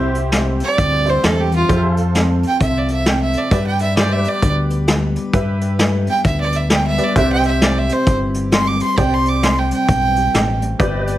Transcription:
Already playing: fingered electric bass C2, steel-string acoustic guitar C3 G3 C4 E4 G4, honky-tonk piano E4 G4 C5, pedal steel guitar G4 C5 E5
0.15 steel-string acoustic guitar G4, closed hi-hat
0.32 steel-string acoustic guitar G3, snare, closed hi-hat
0.60 steel-string acoustic guitar C4, fiddle D5, closed hi-hat
0.78 fingered electric bass D2, steel-string acoustic guitar G2 E4, kick, closed hi-hat
1.05 honky-tonk piano E4 G4 C5, steel-string acoustic guitar G4, closed hi-hat
1.10 fiddle C5
1.23 fingered electric bass E2, steel-string acoustic guitar D3, fiddle A4, snare, closed hi-hat
1.40 fiddle G4
1.52 steel-string acoustic guitar E3, closed hi-hat
1.56 fiddle F4
1.69 fingered electric bass F2, steel-string acoustic guitar F3, honky-tonk piano F4 A4 C5, pedal steel guitar G4 C5 E5, kick, closed hi-hat
1.92 pedal steel guitar A4 F5
1.97 steel-string acoustic guitar A4, closed hi-hat
2.15 steel-string acoustic guitar C4, snare, closed hi-hat
2.43 steel-string acoustic guitar F4, closed hi-hat
2.47 fiddle G5
2.61 fingered electric bass C2, steel-string acoustic guitar C3 A4, fiddle E5, kick, closed hi-hat
2.78 fiddle D5
2.88 steel-string acoustic guitar A4, fiddle E5, closed hi-hat
3.06 steel-string acoustic guitar C4 F4, fiddle G5, snare, closed hi-hat
3.22 fiddle E5
3.33 steel-string acoustic guitar A4, closed hi-hat
3.38 fiddle D5
3.51 fingered electric bass G2, steel-string acoustic guitar G2, honky-tonk piano G4 B4 D5, fiddle E5, kick, closed hi-hat
3.67 fiddle G5
3.79 steel-string acoustic guitar B4, fiddle E5, closed hi-hat
3.97 steel-string acoustic guitar G3, pedal steel guitar G4 C5 D5, fiddle D5, snare, closed hi-hat
4.12 fiddle E5
4.19 pedal steel guitar B4
4.24 steel-string acoustic guitar B3, closed hi-hat
4.28 fiddle D5
4.42 fingered electric bass D2, steel-string acoustic guitar D3 D4, kick, closed hi-hat
4.70 steel-string acoustic guitar B4, closed hi-hat
4.87 steel-string acoustic guitar G3 B3, snare, closed hi-hat
5.16 steel-string acoustic guitar B4, closed hi-hat
5.33 fingered electric bass G2, steel-string acoustic guitar G2, honky-tonk piano G4 B4 E5, kick, closed hi-hat
5.61 steel-string acoustic guitar B4, closed hi-hat
5.79 steel-string acoustic guitar G3, snare, closed hi-hat
6.07 steel-string acoustic guitar B3, fiddle G5, closed hi-hat
6.24 fingered electric bass D2, steel-string acoustic guitar D3 D4, fiddle E5, kick, closed hi-hat
6.41 fiddle D5
6.52 steel-string acoustic guitar B4, fiddle E5, closed hi-hat
6.70 steel-string acoustic guitar G3 B3, fiddle G5, snare, closed hi-hat
6.87 fiddle E5
6.98 honky-tonk piano G4 B4 D5, steel-string acoustic guitar B4, closed hi-hat
7.03 fiddle D5
7.15 fingered electric bass C2, steel-string acoustic guitar C3, honky-tonk piano G4 C5 E5, pedal steel guitar G4 B4, fiddle E5, kick, closed hi-hat
7.20 pedal steel guitar D5
7.32 fiddle G5
7.38 pedal steel guitar C5
7.43 steel-string acoustic guitar G4, pedal steel guitar E5, closed hi-hat
7.47 fiddle E5
7.61 steel-string acoustic guitar G3, fiddle D5, snare, closed hi-hat
7.78 fiddle E5
7.89 steel-string acoustic guitar C4, fiddle C5, closed hi-hat
8.06 fingered electric bass G1, steel-string acoustic guitar G2 E4, kick, closed hi-hat
8.34 steel-string acoustic guitar G4, closed hi-hat
8.52 steel-string acoustic guitar G3 C4, fiddle C6, snare, closed hi-hat
8.67 fiddle D6
8.80 steel-string acoustic guitar G4, fiddle C6, closed hi-hat
8.97 fingered electric bass C2, steel-string acoustic guitar C3, honky-tonk piano G4 C5 D5, fiddle G5, kick, closed hi-hat
9.13 fiddle C6
9.25 steel-string acoustic guitar G4, fiddle D6, closed hi-hat
9.43 steel-string acoustic guitar G3, fiddle C6, snare, closed hi-hat
9.59 fiddle G5
9.71 steel-string acoustic guitar C4, fiddle G5, closed hi-hat
9.88 fingered electric bass B1, steel-string acoustic guitar G2 E4, kick, closed hi-hat
10.16 steel-string acoustic guitar G4, closed hi-hat
10.34 fingered electric bass A1, steel-string acoustic guitar B2, snare, closed hi-hat
10.62 steel-string acoustic guitar A2, closed hi-hat
10.79 fingered electric bass G1, steel-string acoustic guitar G2, honky-tonk piano G4 B4 D5, pedal steel guitar G4 C5 E5, kick, closed hi-hat
11.02 pedal steel guitar B4
11.07 steel-string acoustic guitar B4, pedal steel guitar D5, closed hi-hat

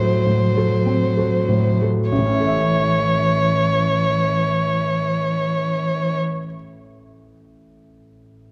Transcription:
Already playing: grand piano A2 C4 F#4 A4, cello F#3, violin C5
0.26 grand piano A2
0.57 grand piano F#4 A4
0.86 grand piano C4
1.17 grand piano F#4 A4
1.48 grand piano A2
1.82 grand piano F#4 A4
2.10 grand piano A1, cello E3, violin C#5
2.18 grand piano A2
2.26 grand piano C#4
2.33 grand piano E4
2.40 grand piano A4
2.47 grand piano E5

